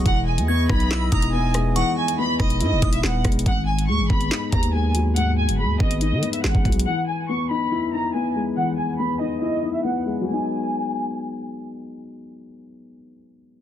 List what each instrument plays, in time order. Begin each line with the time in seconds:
Already playing: woodwind section G#4
0.05 808-style bass E1, grand piano E3, woodwind section E3 B3 D#5, violin section F#5, kick, closed hi-hat
0.27 violin section G#5
0.38 808-style bass E2, closed hi-hat
0.48 grand piano B3, violin section C#6, synth bell G#6
0.69 808-style bass B1, grand piano D#4, violin section B5, kick, cross-stick
0.80 closed hi-hat
0.91 grand piano E4, synth bell E6, snare, clap, closed hi-hat
1.12 808-style bass E1, grand piano D#4, violin section A#5, synth bell D#6, kick, closed hi-hat
1.22 closed hi-hat
1.33 grand piano B3, violin section G#5
1.54 grand piano G#3, cross-stick, closed hi-hat
1.76 grand piano E3, violin section F#5, synth bell C#6, closed hi-hat
1.97 violin section G#5
2.08 closed hi-hat
2.18 grand piano B3, violin section B5
2.40 808-style bass E1, grand piano D#4, violin section D#5, synth bell B5, kick, cross-stick
2.50 closed hi-hat
2.60 808-style bass G#2, grand piano E4, violin section D#5, closed hi-hat
2.72 808-style bass E1
2.82 808-style bass E1, grand piano D#4, synth bell D#6, kick, closed hi-hat
2.93 violin section E5, closed hi-hat
3.03 808-style bass D#1, grand piano B3, violin section F#5, snare, clap
3.24 808-style bass E1, grand piano G#3, kick, cross-stick, closed hi-hat, open hi-hat
3.32 closed hi-hat
3.39 closed hi-hat
3.46 808-style bass G#1, grand piano G#2, violin section F#5, kick, closed hi-hat
3.67 violin section G#5
3.79 closed hi-hat
3.88 808-style bass D#2, grand piano G#3, violin section C#6
3.99 808-style bass G#1
4.10 808-style bass G#1, grand piano B3, violin section B5, kick
4.21 closed hi-hat
4.31 grand piano D#4, snare, clap, closed hi-hat
4.52 808-style bass D#2, grand piano B3, violin section A#5, kick, closed hi-hat
4.63 closed hi-hat
4.74 grand piano G#3, violin section G#5
4.95 grand piano F#3, closed hi-hat
5.16 grand piano G#2, violin section F#5, closed hi-hat
5.38 violin section G#5
5.48 808-style bass F#1, closed hi-hat
5.59 grand piano G#3, violin section B5
5.64 808-style bass D#2
5.80 808-style bass G#1, grand piano B3, violin section D#5, kick
5.91 closed hi-hat
6.01 grand piano D#4, violin section D#5, closed hi-hat
6.12 808-style bass D#3
6.23 grand piano B3, closed hi-hat
6.33 violin section E5, closed hi-hat
6.44 808-style bass G#1, grand piano G#3, violin section F#5, snare, clap
6.55 808-style bass G#1, kick
6.65 808-style bass B1, grand piano F#3, kick, closed hi-hat
6.72 closed hi-hat
6.79 closed hi-hat
6.86 grand piano E3, violin section F#5
7.08 violin section G#5
7.29 grand piano B3, violin section C#6
7.50 grand piano D#4, violin section B5
7.72 grand piano E4
7.93 grand piano D#4, violin section A#5
8.14 grand piano B3, violin section G#5
8.35 grand piano G#3
8.57 grand piano E3, violin section F#5
8.78 violin section G#5
8.99 grand piano B3, violin section B5
9.20 grand piano D#4, violin section D#5
9.42 grand piano E4, violin section D#5
9.63 grand piano D#4
9.74 violin section E5
9.84 grand piano B3, violin section F#5
10.06 grand piano G#3
10.21 grand piano F#3 G#3
10.27 grand piano B3, violin section G#5
10.33 grand piano D#4